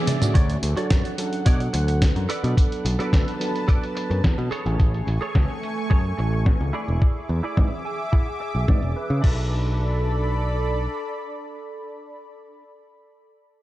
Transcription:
Already playing: E3 B3 D4 G#4 E5 D6
0.06 D5, muted clean electric guitar stroke, open hi-hat, mid tom
0.21 D3 A3 C#4 F#4, closed hi-hat, mid tom, tambourine
0.34 D2 F#4 C#5 D5 F#5, kick, closed hi-hat
0.50 closed hi-hat
0.63 D2, open hi-hat
0.77 F#3 D4 F#4 A4 C#5 D5, closed hi-hat
0.90 F#2, kick, snare, closed hi-hat
1.05 closed hi-hat
1.18 F#3 C#4 D4 A4, open hi-hat
1.33 closed hi-hat
1.45 B2 F#3 D4 F#4 A4 C#5 D5, kick, closed hi-hat
1.60 closed hi-hat
1.73 D2, muted clean electric guitar stroke, open hi-hat
1.88 muted clean electric guitar stroke, closed hi-hat
2.02 kick, snare, closed hi-hat
2.16 F#2, closed hi-hat
2.29 A4 B4 D5 A5, open hi-hat
2.44 B2 F#3 B3 D4 A4, closed hi-hat
2.57 kick, closed hi-hat
2.72 closed hi-hat
2.85 B1, open hi-hat
2.99 F#3 B3 D4 A4 B4 D5, closed hi-hat
3.13 D2, kick, snare, closed hi-hat
3.28 closed hi-hat
3.40 F#3 B3 D4 A4, open hi-hat
3.56 closed hi-hat
3.67 F#3 B3 D4 A4 B4 D5, kick, closed hi-hat
3.83 closed hi-hat
3.95 muted clean electric guitar stroke, open hi-hat
4.10 F#2, muted clean electric guitar stroke, closed hi-hat
4.24 E2, kick, snare, closed hi-hat
4.38 B2, closed hi-hat
4.51 A3 G#4 A4 C#5 G#5 C#6, muted picked electric bass stroke, open hi-hat
4.66 A1 E3 A3 C#4 G#5, closed hi-hat
4.80 A1, kick, closed hi-hat
4.94 closed hi-hat
5.07 A1, open hi-hat
5.21 G#4 A4 C#5, closed hi-hat
5.35 C#2, kick, snare, closed hi-hat
5.50 closed hi-hat
5.63 open hi-hat
5.77 closed hi-hat
5.90 F#2 G#4 A4 C#5, kick, closed hi-hat
6.05 closed hi-hat
6.18 A1, muted clean electric guitar stroke, open hi-hat
6.32 muted clean electric guitar stroke, closed hi-hat
6.46 kick, snare, closed hi-hat
6.60 C#2, closed hi-hat
6.73 E4 G#4 D5 E5 D6, open hi-hat
6.88 E1, closed hi-hat
7.02 kick, closed hi-hat
7.16 closed hi-hat
7.29 E2, open hi-hat
7.43 E4 G#4 D5, muted picked electric bass stroke, closed hi-hat
7.57 G#2, kick, snare
7.85 G#5, open hi-hat
7.99 closed hi-hat
8.12 E4 G#4 E5 F#5, kick, closed hi-hat
8.27 closed hi-hat
8.40 E5, muted clean electric guitar stroke, open hi-hat
8.55 B1, muted clean electric guitar stroke, closed hi-hat
8.68 G#2 D5, kick, snare
8.82 E1
8.96 B4, muted clean electric guitar stroke, muted picked electric bass stroke, open hi-hat
9.10 C#3
9.21 B1 D4 A4 D5 B5, kick, crash
9.27 B4

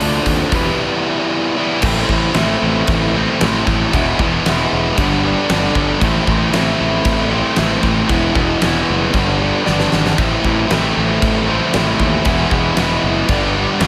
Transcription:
Already playing: D3 F3 A3 D4
0.01 D2, open hi-hat
0.26 D#2, kick, open hi-hat
0.52 E1 E3 G3 B3 E4, kick, open hi-hat
1.57 E3 G3 B3 E4
1.82 A1 A2 E3 A3 C4 E4, kick, crash
2.09 A1 A3 C4 E4, kick
2.34 A1 E3 A3 C4, snare, crash
2.39 E4
2.62 A1
2.87 A1, kick, crash
3.14 A3 C4 E4
3.41 A1 A2 E3 A3 C4 E4, snare, crash
3.66 A1 A3 C4 E4, kick, snare
3.93 E1 E3 G#3 B3 E4, kick, crash
4.19 E1 B3 E4, kick
4.23 G#3
4.46 E1 E3 G#3 B3 E4, snare, crash
4.72 E1
4.98 G1 G2 D3 G3 B3 D4, kick, crash
5.23 G3 B3 D4
5.49 G1 G2 D3 G3 B3 D4, snare, crash
5.75 G1 G3 B3 D4, kick
6.01 A1 A2 E3 A3 C4 E4, kick, crash
6.27 A1 A3 C4 E4, kick
6.53 A1 E3 A3 C4 E4, snare, crash
6.81 A1
7.05 A1, kick, crash
7.30 A3 C4 E4
7.56 A1 A2 E3 A3 C4 E4, snare, crash
7.83 A1 A3 C4 E4, kick, snare
8.09 E1 E3 G#3 B3 E4, kick, crash
8.35 E1 G#3 B3 E4, kick
8.61 E1 E3 G#3 B3 E4, snare, crash
8.90 F#1
9.13 G1 G2 D3 G3 B3 D4, kick, crash
9.40 G3 B3 D4
9.65 G1 G2 D3 G3 B3 D4, snare
9.80 snare
9.92 G#1 G3 B3 D4, snare
10.06 snare
10.17 A1 A2 E3 A3 C4 E4, kick, crash
10.44 A1 A3 C4 E4, kick
10.69 A1 E3 A3 C4 E4, snare, crash
10.97 A1
11.22 A1, kick, crash
11.48 A3 C4 E4
11.73 A1 A2 E3 A3 C4 E4, snare, crash
11.99 D#2 A3 C4 E4, kick
12.24 E1 E3 G#3 B3 E4, kick, crash
12.51 E1 G#3 B3 E4, kick
12.77 E1 E3 G#3 B3 E4, snare, crash
13.03 F#1
13.28 G1 G2 D3 G3 B3 D4, kick, crash
13.56 G3 B3 D4
13.80 G1 G2 D3 G3 B3 D4, snare, crash

